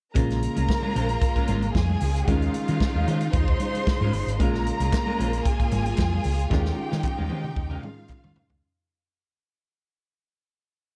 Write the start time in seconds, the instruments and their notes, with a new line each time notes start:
0.14 fingered electric bass A#1, grand piano C#3 G#3 A#3 F4, string section C#3 A#3 F4, clean electric guitar G#3 C#4 F4 A#4, violin section A#4 A#5, kick, closed hi-hat, muted conga, low conga
0.18 string section G#3
0.30 snare, closed hi-hat
0.42 closed hi-hat, muted conga
0.55 fingered electric bass C2, clean electric guitar G#3 C#4 F4 A#4, closed hi-hat, high conga
0.68 muted clean electric guitar stroke, kick, snare
0.82 clean electric guitar G#3 C#4 F4 A#4, high conga
0.95 fingered electric bass A#1, clean electric guitar G#3 C#4 F4 C5, closed hi-hat, muted conga, low conga
1.09 muted clean electric guitar stroke, closed hi-hat
1.21 muted clean electric guitar stroke, kick, closed hi-hat
1.36 clean electric guitar G#3 C#4 F4 A#4, kick, closed hi-hat
1.47 fingered electric bass G#1, clean electric guitar G#3 C#4 F4 A#4, closed hi-hat, high conga
1.62 muted clean electric guitar stroke, closed hi-hat, high conga
1.74 fingered electric bass F2, violin section G#4 G#5, muted clean electric guitar stroke, kick, snare, muted conga
1.88 muted clean electric guitar stroke, high conga
2.00 fingered electric bass C#2, open hi-hat, muted conga, low conga
2.15 muted clean electric guitar stroke, closed hi-hat
2.27 fingered electric bass D#2, grand piano D#3 G#3 C#4 F4, clean electric guitar G#3 C#4 F4 A#4, string section D#4 F4, violin section F4 F5, kick, closed hi-hat, muted conga, low conga
2.42 closed hi-hat
2.54 muted clean electric guitar stroke, closed hi-hat, muted conga
2.68 fingered electric bass D#3, clean electric guitar G#3 C#4 F4 A#4, closed hi-hat, high conga
2.80 muted clean electric guitar stroke, kick, snare, muted conga
2.94 fingered electric bass D#2, clean electric guitar G#3 C#4 F4 A#4, high conga
3.08 fingered electric bass D#3, clean electric guitar G#3 C#4 F4 C5, closed hi-hat, muted conga, low conga
3.20 muted clean electric guitar stroke, closed hi-hat
3.33 fingered electric bass D#2, violin section C5 C6, muted clean electric guitar stroke, kick, closed hi-hat, muted conga
3.48 muted clean electric guitar stroke, kick
3.60 closed hi-hat, high conga
3.74 muted clean electric guitar stroke, closed hi-hat, high conga
3.87 muted clean electric guitar stroke, kick, snare, muted conga
4.01 fingered electric bass G#2, clean electric guitar G#3 C#4 F4 A#4, high conga
4.13 fingered electric bass G1, muted clean electric guitar stroke, open hi-hat, muted conga, low conga
4.26 fingered electric bass G#1, muted clean electric guitar stroke, closed hi-hat
4.38 fingered electric bass A#1, grand piano C#3 G#3 A#3 F4, clean electric guitar G#3 C#4 F4 A#4, string section A#3 F4, violin section A#4 A#5, kick, closed hi-hat, muted conga, low conga
4.54 snare
4.66 muted clean electric guitar stroke, closed hi-hat
4.80 fingered electric bass C2, clean electric guitar G#3 C#4 F4 A#4, closed hi-hat, high conga
4.93 muted clean electric guitar stroke, kick, snare, clap
5.06 clean electric guitar G#3 C#4 F4 A#4, high conga
5.18 fingered electric bass A#1, clean electric guitar G#3 C#4 F4 C5, closed hi-hat, muted conga, low conga
5.33 muted clean electric guitar stroke, closed hi-hat
5.45 violin section G#4 G#5, muted clean electric guitar stroke, kick, closed hi-hat
5.59 muted clean electric guitar stroke, kick, closed hi-hat
5.71 fingered electric bass G#1, closed hi-hat, muted conga, high conga
5.85 muted clean electric guitar stroke, closed hi-hat, high conga
5.98 fingered electric bass F2, muted clean electric guitar stroke, kick, snare, clap, muted conga
6.11 muted clean electric guitar stroke, high conga
6.24 fingered electric bass C#2, open hi-hat, low conga
6.38 muted clean electric guitar stroke, closed hi-hat
6.50 fingered electric bass D#2, grand piano D#3 G#3 C#4 F4, clean electric guitar G#3 C#4 F4 A#4, string section D#4, violin section G4 G5, kick, snare, low conga
6.65 snare
6.76 muted clean electric guitar stroke, muted conga
6.91 fingered electric bass D#3, clean electric guitar G#3 C#4 F4 A#4, snare, high conga
7.03 muted clean electric guitar stroke, kick, clap, high tom, muted conga
7.17 fingered electric bass D#2, clean electric guitar G#3 C#4 F4 A#4, high conga
7.30 fingered electric bass D#3, clean electric guitar G#3 C#4 F4 C5, high tom, low conga
7.43 muted clean electric guitar stroke, mid tom
7.55 fingered electric bass D#2, muted clean electric guitar stroke, kick, muted conga
7.70 clean electric guitar G#3 C#4 F4 A#4, mid tom
7.82 grand piano D#3 G#3 C#4 G#4, violin section F4 F5, muted clean electric guitar stroke, mid tom, muted conga, high conga
7.97 muted clean electric guitar stroke, high conga
8.09 muted clean electric guitar stroke, kick, clap, mid tom
8.22 fingered electric bass D#3, muted clean electric guitar stroke, floor tom, high conga
8.36 floor tom, low conga
8.48 fingered electric bass C#2, muted clean electric guitar stroke, floor tom